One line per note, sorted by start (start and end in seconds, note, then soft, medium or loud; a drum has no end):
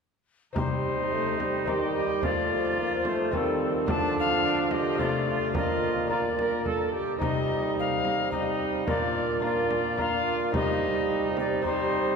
0.53 1.70 C3 medium
0.53 1.64 C3 soft
0.53 1.14 G3 medium
0.53 1.63 C4 soft
0.53 1.63 D#4 soft
0.53 1.70 D#4 medium
0.53 1.64 G4 soft
0.53 frame drum medium
0.58 1.70 C5 medium
1.13 1.41 A3 medium
1.39 1.68 G3 medium
1.39 frame drum soft
1.65 2.23 D#3 medium
1.65 2.20 D#3 soft
1.65 2.25 G3 soft
1.65 2.20 C4 soft
1.65 2.21 D#4 soft
1.65 2.22 G4 soft
1.65 1.96 G4 medium
1.65 2.23 D#5 medium
1.65 frame drum soft
1.96 2.25 G4 medium
2.21 3.35 F3 medium
2.21 3.30 F3 soft
2.21 2.80 A3 medium
2.21 3.29 C4 soft
2.21 3.30 F4 soft
2.21 3.34 F4 medium
2.21 3.30 A4 soft
2.21 3.08 D5 medium
2.21 frame drum medium
2.79 3.06 A#3 medium
3.05 3.34 A3 medium
3.05 3.36 C5 medium
3.05 frame drum soft
3.31 3.91 D#3 medium
3.31 3.85 D#3 soft
3.31 3.88 G3 medium
3.31 3.86 C4 soft
3.31 3.90 C4 medium
3.31 3.86 F4 soft
3.31 3.87 A4 soft
3.31 3.91 A4 medium
3.31 frame drum soft
3.86 4.99 D3 medium
3.86 4.96 D3 medium
3.86 5.03 F3 medium
3.86 4.94 D4 soft
3.86 4.44 D4 medium
3.86 4.95 F4 soft
3.86 4.96 A4 soft
3.86 4.17 A5 loud
3.86 frame drum medium
4.19 4.73 F5 medium
4.44 4.70 D4 medium
4.71 5.01 G4 medium
4.71 4.99 D#5 medium
4.71 frame drum soft
4.95 5.51 C3 soft
4.95 5.51 D4 soft
4.95 5.51 F4 soft
4.95 5.27 F4 medium
4.95 5.53 A4 soft
4.99 5.56 C3 medium
4.99 5.55 A3 medium
4.99 5.54 D5 medium
4.99 frame drum soft
5.28 5.55 F4 medium
5.51 6.94 A#2 medium
5.51 6.90 A#2 soft
5.51 6.07 D3 soft
5.51 6.07 F4 soft
5.51 6.08 A#4 soft
5.51 frame drum medium
5.55 6.92 A#3 medium
5.55 6.05 F4 soft
5.55 6.12 D#5 medium
6.07 7.17 D4 soft
6.07 7.18 F4 soft
6.07 7.18 A#4 soft
6.07 6.66 D5 medium
6.11 6.19 F4 medium
6.39 6.66 A#4 medium
6.39 frame drum soft
6.66 6.94 A4 medium
6.66 frame drum soft
6.94 7.21 G4 medium
7.18 8.85 C3 medium
7.18 8.85 C3 soft
7.18 8.29 G3 medium
7.18 8.28 C4 soft
7.18 8.29 D#4 soft
7.18 8.29 D#4 medium
7.18 8.29 G4 soft
7.18 7.74 D#5 medium
7.18 frame drum medium
7.79 8.31 F5 medium
8.05 frame drum soft
8.30 8.87 G3 medium
8.30 8.85 C4 soft
8.30 8.86 D#4 soft
8.30 8.90 D#4 medium
8.30 8.87 G4 soft
8.30 8.87 D#5 medium
8.30 frame drum soft
8.85 10.51 A#2 medium
8.85 10.51 A#2 soft
8.85 9.42 A#3 medium
8.85 9.39 D4 soft
8.85 9.40 F4 soft
8.85 9.42 F4 medium
8.85 9.41 A#4 soft
8.85 9.43 D5 medium
8.85 frame drum medium
9.40 9.98 A#3 soft
9.40 9.95 D4 soft
9.40 9.96 F4 medium
9.40 9.98 F4 medium
9.40 9.97 A#4 soft
9.45 10.03 D5 medium
9.71 frame drum soft
9.96 10.54 A#3 medium
9.96 10.50 D4 soft
9.96 10.51 F4 soft
9.96 10.53 F4 medium
9.96 10.53 A#4 soft
9.96 frame drum soft
10.01 10.55 F5 medium
10.51 12.16 C3 medium
10.51 12.16 C3 soft
10.51 11.60 C4 soft
10.51 11.61 D#4 soft
10.51 11.61 G4 soft
10.51 frame drum medium
10.55 11.64 G3 medium
10.55 11.64 D#4 medium
10.55 11.36 D#5 medium
11.37 11.64 D5 medium
11.37 frame drum soft
11.62 12.16 C4 soft
11.62 12.16 D#4 soft
11.62 12.16 D#4 medium
11.62 12.16 G4 soft
11.62 12.16 C5 medium
11.62 frame drum soft
11.66 12.16 G3 medium